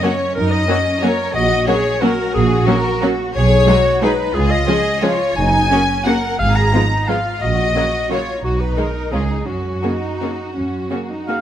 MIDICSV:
0, 0, Header, 1, 8, 480
1, 0, Start_track
1, 0, Key_signature, 6, "major"
1, 0, Tempo, 331675
1, 515, Time_signature, 3, 2, 24, 8
1, 6762, Tempo, 341686
1, 12522, Tempo, 358423
1, 16054, End_track
2, 0, Start_track
2, 0, Title_t, "Oboe"
2, 0, Program_c, 0, 68
2, 15882, Note_on_c, 0, 77, 59
2, 16054, Note_off_c, 0, 77, 0
2, 16054, End_track
3, 0, Start_track
3, 0, Title_t, "Clarinet"
3, 0, Program_c, 1, 71
3, 47, Note_on_c, 1, 73, 86
3, 492, Note_off_c, 1, 73, 0
3, 501, Note_on_c, 1, 70, 91
3, 743, Note_on_c, 1, 75, 88
3, 765, Note_off_c, 1, 70, 0
3, 1489, Note_on_c, 1, 73, 76
3, 1511, Note_off_c, 1, 75, 0
3, 1946, Note_off_c, 1, 73, 0
3, 1955, Note_on_c, 1, 75, 99
3, 2410, Note_off_c, 1, 75, 0
3, 2419, Note_on_c, 1, 73, 91
3, 2911, Note_on_c, 1, 70, 89
3, 2933, Note_off_c, 1, 73, 0
3, 3377, Note_off_c, 1, 70, 0
3, 3386, Note_on_c, 1, 68, 97
3, 3858, Note_off_c, 1, 68, 0
3, 3865, Note_on_c, 1, 66, 84
3, 4363, Note_off_c, 1, 66, 0
3, 4859, Note_on_c, 1, 73, 110
3, 5824, Note_on_c, 1, 71, 89
3, 5846, Note_off_c, 1, 73, 0
3, 6284, Note_on_c, 1, 68, 93
3, 6306, Note_off_c, 1, 71, 0
3, 6518, Note_on_c, 1, 75, 84
3, 6540, Note_off_c, 1, 68, 0
3, 7266, Note_on_c, 1, 73, 79
3, 7287, Note_off_c, 1, 75, 0
3, 7716, Note_off_c, 1, 73, 0
3, 7724, Note_on_c, 1, 80, 107
3, 8724, Note_on_c, 1, 78, 81
3, 8745, Note_off_c, 1, 80, 0
3, 9166, Note_off_c, 1, 78, 0
3, 9174, Note_on_c, 1, 77, 99
3, 9413, Note_on_c, 1, 82, 83
3, 9434, Note_off_c, 1, 77, 0
3, 10152, Note_on_c, 1, 77, 72
3, 10173, Note_off_c, 1, 82, 0
3, 10604, Note_off_c, 1, 77, 0
3, 10613, Note_on_c, 1, 75, 83
3, 11560, Note_off_c, 1, 75, 0
3, 11584, Note_on_c, 1, 73, 63
3, 12039, Note_off_c, 1, 73, 0
3, 12052, Note_on_c, 1, 66, 68
3, 12283, Note_on_c, 1, 71, 60
3, 12304, Note_off_c, 1, 66, 0
3, 12521, Note_on_c, 1, 70, 60
3, 12541, Note_off_c, 1, 71, 0
3, 12983, Note_on_c, 1, 68, 57
3, 13003, Note_off_c, 1, 70, 0
3, 13446, Note_on_c, 1, 66, 55
3, 13467, Note_off_c, 1, 68, 0
3, 16054, Note_off_c, 1, 66, 0
3, 16054, End_track
4, 0, Start_track
4, 0, Title_t, "Violin section"
4, 0, Program_c, 2, 48
4, 59, Note_on_c, 2, 73, 64
4, 502, Note_on_c, 2, 70, 74
4, 524, Note_off_c, 2, 73, 0
4, 735, Note_off_c, 2, 70, 0
4, 744, Note_on_c, 2, 75, 74
4, 1480, Note_on_c, 2, 73, 64
4, 1485, Note_off_c, 2, 75, 0
4, 1937, Note_on_c, 2, 75, 79
4, 1949, Note_off_c, 2, 73, 0
4, 2404, Note_on_c, 2, 73, 73
4, 2408, Note_off_c, 2, 75, 0
4, 2902, Note_off_c, 2, 73, 0
4, 2902, Note_on_c, 2, 70, 73
4, 3382, Note_off_c, 2, 70, 0
4, 3390, Note_on_c, 2, 68, 73
4, 3863, Note_on_c, 2, 66, 66
4, 3869, Note_off_c, 2, 68, 0
4, 4372, Note_off_c, 2, 66, 0
4, 4854, Note_on_c, 2, 73, 92
4, 5760, Note_off_c, 2, 73, 0
4, 5832, Note_on_c, 2, 71, 71
4, 6290, Note_off_c, 2, 71, 0
4, 6296, Note_on_c, 2, 68, 80
4, 6510, Note_on_c, 2, 75, 77
4, 6522, Note_off_c, 2, 68, 0
4, 7254, Note_on_c, 2, 73, 72
4, 7256, Note_off_c, 2, 75, 0
4, 7743, Note_off_c, 2, 73, 0
4, 7743, Note_on_c, 2, 80, 92
4, 8715, Note_off_c, 2, 80, 0
4, 8716, Note_on_c, 2, 78, 69
4, 9174, Note_on_c, 2, 77, 78
4, 9187, Note_off_c, 2, 78, 0
4, 9398, Note_on_c, 2, 82, 73
4, 9407, Note_off_c, 2, 77, 0
4, 10140, Note_on_c, 2, 77, 55
4, 10145, Note_off_c, 2, 82, 0
4, 10605, Note_off_c, 2, 77, 0
4, 10616, Note_on_c, 2, 75, 68
4, 11581, Note_off_c, 2, 75, 0
4, 11583, Note_on_c, 2, 73, 54
4, 12038, Note_off_c, 2, 73, 0
4, 12053, Note_on_c, 2, 66, 51
4, 12276, Note_off_c, 2, 66, 0
4, 12288, Note_on_c, 2, 71, 47
4, 12528, Note_off_c, 2, 71, 0
4, 12534, Note_on_c, 2, 70, 47
4, 13004, Note_off_c, 2, 70, 0
4, 13007, Note_on_c, 2, 68, 46
4, 13459, Note_off_c, 2, 68, 0
4, 13470, Note_on_c, 2, 66, 43
4, 16054, Note_off_c, 2, 66, 0
4, 16054, End_track
5, 0, Start_track
5, 0, Title_t, "Cello section"
5, 0, Program_c, 3, 48
5, 51, Note_on_c, 3, 61, 64
5, 520, Note_off_c, 3, 61, 0
5, 523, Note_on_c, 3, 63, 70
5, 994, Note_off_c, 3, 63, 0
5, 997, Note_on_c, 3, 61, 65
5, 1480, Note_off_c, 3, 61, 0
5, 1492, Note_on_c, 3, 70, 71
5, 1954, Note_off_c, 3, 70, 0
5, 1956, Note_on_c, 3, 66, 76
5, 2427, Note_off_c, 3, 66, 0
5, 2433, Note_on_c, 3, 68, 74
5, 2926, Note_on_c, 3, 66, 73
5, 2927, Note_off_c, 3, 68, 0
5, 3853, Note_off_c, 3, 66, 0
5, 3878, Note_on_c, 3, 70, 80
5, 4379, Note_off_c, 3, 70, 0
5, 4381, Note_on_c, 3, 66, 70
5, 4850, Note_off_c, 3, 66, 0
5, 4861, Note_on_c, 3, 68, 72
5, 5318, Note_off_c, 3, 68, 0
5, 5333, Note_on_c, 3, 66, 74
5, 5821, Note_off_c, 3, 66, 0
5, 5821, Note_on_c, 3, 63, 67
5, 6284, Note_off_c, 3, 63, 0
5, 6286, Note_on_c, 3, 65, 73
5, 6765, Note_off_c, 3, 65, 0
5, 6765, Note_on_c, 3, 68, 74
5, 7259, Note_off_c, 3, 68, 0
5, 7264, Note_on_c, 3, 65, 68
5, 7738, Note_off_c, 3, 65, 0
5, 7746, Note_on_c, 3, 63, 70
5, 8212, Note_off_c, 3, 63, 0
5, 8216, Note_on_c, 3, 61, 67
5, 8712, Note_on_c, 3, 70, 68
5, 8713, Note_off_c, 3, 61, 0
5, 9185, Note_off_c, 3, 70, 0
5, 9189, Note_on_c, 3, 68, 68
5, 9654, Note_off_c, 3, 68, 0
5, 9669, Note_on_c, 3, 63, 62
5, 10158, Note_off_c, 3, 63, 0
5, 10160, Note_on_c, 3, 65, 53
5, 10625, Note_off_c, 3, 65, 0
5, 10625, Note_on_c, 3, 66, 61
5, 11084, Note_off_c, 3, 66, 0
5, 11101, Note_on_c, 3, 66, 57
5, 11578, Note_off_c, 3, 66, 0
5, 11583, Note_on_c, 3, 65, 51
5, 12047, Note_off_c, 3, 65, 0
5, 12052, Note_on_c, 3, 63, 53
5, 13438, Note_off_c, 3, 63, 0
5, 13462, Note_on_c, 3, 61, 42
5, 13895, Note_off_c, 3, 61, 0
5, 13943, Note_on_c, 3, 63, 54
5, 14862, Note_off_c, 3, 63, 0
5, 14916, Note_on_c, 3, 61, 44
5, 15390, Note_off_c, 3, 61, 0
5, 15396, Note_on_c, 3, 58, 40
5, 15641, Note_on_c, 3, 63, 40
5, 15642, Note_off_c, 3, 58, 0
5, 16054, Note_off_c, 3, 63, 0
5, 16054, End_track
6, 0, Start_track
6, 0, Title_t, "Violin section"
6, 0, Program_c, 4, 48
6, 59, Note_on_c, 4, 66, 54
6, 60, Note_on_c, 4, 61, 54
6, 175, Note_off_c, 4, 61, 0
6, 175, Note_off_c, 4, 66, 0
6, 998, Note_on_c, 4, 61, 59
6, 1000, Note_on_c, 4, 66, 56
6, 1114, Note_off_c, 4, 61, 0
6, 1116, Note_off_c, 4, 66, 0
6, 1482, Note_on_c, 4, 66, 53
6, 1486, Note_on_c, 4, 61, 61
6, 1597, Note_off_c, 4, 66, 0
6, 1602, Note_off_c, 4, 61, 0
6, 2418, Note_on_c, 4, 66, 58
6, 2422, Note_on_c, 4, 61, 57
6, 2533, Note_off_c, 4, 66, 0
6, 2538, Note_off_c, 4, 61, 0
6, 2916, Note_on_c, 4, 61, 59
6, 2919, Note_on_c, 4, 66, 59
6, 3032, Note_off_c, 4, 61, 0
6, 3034, Note_off_c, 4, 66, 0
6, 3859, Note_on_c, 4, 66, 58
6, 3861, Note_on_c, 4, 61, 57
6, 3975, Note_off_c, 4, 66, 0
6, 3976, Note_off_c, 4, 61, 0
6, 4366, Note_on_c, 4, 66, 59
6, 4368, Note_on_c, 4, 61, 58
6, 4481, Note_off_c, 4, 66, 0
6, 4484, Note_off_c, 4, 61, 0
6, 5325, Note_on_c, 4, 68, 55
6, 5329, Note_on_c, 4, 63, 57
6, 5441, Note_off_c, 4, 68, 0
6, 5445, Note_off_c, 4, 63, 0
6, 5822, Note_on_c, 4, 63, 59
6, 5826, Note_on_c, 4, 68, 59
6, 5938, Note_off_c, 4, 63, 0
6, 5942, Note_off_c, 4, 68, 0
6, 6760, Note_on_c, 4, 68, 57
6, 6767, Note_on_c, 4, 61, 58
6, 6873, Note_off_c, 4, 68, 0
6, 6879, Note_off_c, 4, 61, 0
6, 7254, Note_on_c, 4, 68, 58
6, 7259, Note_on_c, 4, 61, 59
6, 7367, Note_off_c, 4, 68, 0
6, 7372, Note_off_c, 4, 61, 0
6, 8226, Note_on_c, 4, 61, 56
6, 8230, Note_on_c, 4, 66, 56
6, 8339, Note_off_c, 4, 61, 0
6, 8342, Note_off_c, 4, 66, 0
6, 8715, Note_on_c, 4, 61, 54
6, 8718, Note_on_c, 4, 66, 55
6, 8827, Note_off_c, 4, 61, 0
6, 8831, Note_off_c, 4, 66, 0
6, 9660, Note_on_c, 4, 59, 53
6, 9662, Note_on_c, 4, 65, 48
6, 9772, Note_off_c, 4, 59, 0
6, 9775, Note_off_c, 4, 65, 0
6, 10156, Note_on_c, 4, 65, 50
6, 10160, Note_on_c, 4, 59, 47
6, 10269, Note_off_c, 4, 65, 0
6, 10272, Note_off_c, 4, 59, 0
6, 11102, Note_on_c, 4, 58, 46
6, 11103, Note_on_c, 4, 66, 46
6, 11215, Note_off_c, 4, 58, 0
6, 11215, Note_off_c, 4, 66, 0
6, 11592, Note_on_c, 4, 58, 44
6, 11592, Note_on_c, 4, 66, 43
6, 11704, Note_off_c, 4, 58, 0
6, 11704, Note_off_c, 4, 66, 0
6, 12523, Note_on_c, 4, 56, 36
6, 12525, Note_on_c, 4, 63, 36
6, 12630, Note_off_c, 4, 56, 0
6, 12632, Note_off_c, 4, 63, 0
6, 12990, Note_on_c, 4, 61, 38
6, 12993, Note_on_c, 4, 65, 38
6, 13097, Note_off_c, 4, 61, 0
6, 13100, Note_off_c, 4, 65, 0
6, 13936, Note_on_c, 4, 66, 33
6, 13937, Note_on_c, 4, 61, 34
6, 14043, Note_off_c, 4, 66, 0
6, 14044, Note_off_c, 4, 61, 0
6, 14451, Note_on_c, 4, 66, 33
6, 14452, Note_on_c, 4, 61, 34
6, 14558, Note_off_c, 4, 66, 0
6, 14560, Note_off_c, 4, 61, 0
6, 15380, Note_on_c, 4, 61, 32
6, 15382, Note_on_c, 4, 66, 31
6, 15487, Note_off_c, 4, 61, 0
6, 15489, Note_off_c, 4, 66, 0
6, 15887, Note_on_c, 4, 66, 33
6, 15888, Note_on_c, 4, 61, 33
6, 15994, Note_off_c, 4, 66, 0
6, 15995, Note_off_c, 4, 61, 0
6, 16054, End_track
7, 0, Start_track
7, 0, Title_t, "Viola section"
7, 0, Program_c, 5, 48
7, 37, Note_on_c, 5, 54, 52
7, 37, Note_on_c, 5, 58, 50
7, 152, Note_off_c, 5, 58, 0
7, 153, Note_off_c, 5, 54, 0
7, 987, Note_on_c, 5, 54, 58
7, 989, Note_on_c, 5, 58, 55
7, 1103, Note_off_c, 5, 54, 0
7, 1104, Note_off_c, 5, 58, 0
7, 1484, Note_on_c, 5, 54, 57
7, 1489, Note_on_c, 5, 58, 54
7, 1600, Note_off_c, 5, 54, 0
7, 1605, Note_off_c, 5, 58, 0
7, 2423, Note_on_c, 5, 58, 56
7, 2429, Note_on_c, 5, 54, 58
7, 2539, Note_off_c, 5, 58, 0
7, 2545, Note_off_c, 5, 54, 0
7, 2926, Note_on_c, 5, 54, 58
7, 2930, Note_on_c, 5, 58, 56
7, 3042, Note_off_c, 5, 54, 0
7, 3046, Note_off_c, 5, 58, 0
7, 3869, Note_on_c, 5, 54, 61
7, 3872, Note_on_c, 5, 58, 58
7, 3984, Note_off_c, 5, 54, 0
7, 3988, Note_off_c, 5, 58, 0
7, 4380, Note_on_c, 5, 54, 55
7, 4383, Note_on_c, 5, 58, 56
7, 4495, Note_off_c, 5, 54, 0
7, 4499, Note_off_c, 5, 58, 0
7, 5313, Note_on_c, 5, 54, 56
7, 5316, Note_on_c, 5, 56, 59
7, 5428, Note_off_c, 5, 54, 0
7, 5431, Note_off_c, 5, 56, 0
7, 5820, Note_on_c, 5, 56, 59
7, 5823, Note_on_c, 5, 54, 55
7, 5936, Note_off_c, 5, 56, 0
7, 5939, Note_off_c, 5, 54, 0
7, 6764, Note_on_c, 5, 56, 54
7, 6768, Note_on_c, 5, 53, 59
7, 6877, Note_off_c, 5, 56, 0
7, 6881, Note_off_c, 5, 53, 0
7, 7259, Note_on_c, 5, 53, 57
7, 7263, Note_on_c, 5, 56, 56
7, 7371, Note_off_c, 5, 53, 0
7, 7375, Note_off_c, 5, 56, 0
7, 8226, Note_on_c, 5, 58, 52
7, 8229, Note_on_c, 5, 49, 52
7, 8338, Note_off_c, 5, 58, 0
7, 8341, Note_off_c, 5, 49, 0
7, 8716, Note_on_c, 5, 49, 52
7, 8716, Note_on_c, 5, 58, 55
7, 8828, Note_off_c, 5, 49, 0
7, 8828, Note_off_c, 5, 58, 0
7, 9668, Note_on_c, 5, 56, 49
7, 9672, Note_on_c, 5, 53, 48
7, 9781, Note_off_c, 5, 56, 0
7, 9784, Note_off_c, 5, 53, 0
7, 10152, Note_on_c, 5, 56, 48
7, 10155, Note_on_c, 5, 53, 48
7, 10264, Note_off_c, 5, 56, 0
7, 10267, Note_off_c, 5, 53, 0
7, 11091, Note_on_c, 5, 49, 46
7, 11092, Note_on_c, 5, 54, 45
7, 11203, Note_off_c, 5, 49, 0
7, 11205, Note_off_c, 5, 54, 0
7, 11579, Note_on_c, 5, 49, 41
7, 11580, Note_on_c, 5, 54, 43
7, 11691, Note_off_c, 5, 49, 0
7, 11692, Note_off_c, 5, 54, 0
7, 12522, Note_on_c, 5, 51, 38
7, 12525, Note_on_c, 5, 56, 39
7, 12629, Note_off_c, 5, 51, 0
7, 12632, Note_off_c, 5, 56, 0
7, 12999, Note_on_c, 5, 49, 34
7, 13000, Note_on_c, 5, 56, 36
7, 13107, Note_off_c, 5, 49, 0
7, 13108, Note_off_c, 5, 56, 0
7, 13943, Note_on_c, 5, 58, 36
7, 13947, Note_on_c, 5, 49, 35
7, 14050, Note_off_c, 5, 58, 0
7, 14054, Note_off_c, 5, 49, 0
7, 14458, Note_on_c, 5, 49, 34
7, 14459, Note_on_c, 5, 58, 30
7, 14565, Note_off_c, 5, 49, 0
7, 14566, Note_off_c, 5, 58, 0
7, 15392, Note_on_c, 5, 49, 34
7, 15397, Note_on_c, 5, 58, 33
7, 15499, Note_off_c, 5, 49, 0
7, 15504, Note_off_c, 5, 58, 0
7, 15880, Note_on_c, 5, 58, 30
7, 15882, Note_on_c, 5, 49, 32
7, 15987, Note_off_c, 5, 58, 0
7, 15989, Note_off_c, 5, 49, 0
7, 16054, End_track
8, 0, Start_track
8, 0, Title_t, "Double bass section"
8, 0, Program_c, 6, 48
8, 522, Note_on_c, 6, 42, 69
8, 910, Note_off_c, 6, 42, 0
8, 1950, Note_on_c, 6, 34, 72
8, 2341, Note_off_c, 6, 34, 0
8, 3400, Note_on_c, 6, 34, 78
8, 3791, Note_off_c, 6, 34, 0
8, 4856, Note_on_c, 6, 35, 80
8, 5242, Note_off_c, 6, 35, 0
8, 6290, Note_on_c, 6, 37, 73
8, 6683, Note_off_c, 6, 37, 0
8, 7739, Note_on_c, 6, 30, 74
8, 8136, Note_off_c, 6, 30, 0
8, 9176, Note_on_c, 6, 32, 68
8, 9574, Note_off_c, 6, 32, 0
8, 10621, Note_on_c, 6, 34, 64
8, 11012, Note_off_c, 6, 34, 0
8, 12048, Note_on_c, 6, 35, 55
8, 12441, Note_off_c, 6, 35, 0
8, 12998, Note_on_c, 6, 37, 43
8, 13387, Note_off_c, 6, 37, 0
8, 13463, Note_on_c, 6, 42, 45
8, 13862, Note_off_c, 6, 42, 0
8, 14916, Note_on_c, 6, 42, 44
8, 15307, Note_off_c, 6, 42, 0
8, 16054, End_track
0, 0, End_of_file